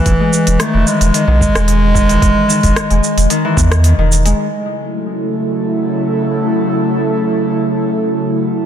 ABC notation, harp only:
X:1
M:4/4
L:1/16
Q:"Swing 16ths" 1/4=111
K:F#dor
V:1 name="Harp" clef=bass
z G, z2 D, E, z2 D, D, z G, z2 D, E, | z2 D, D, z G, z2 D, E, z2 D, D, z G, | z16 | z16 |]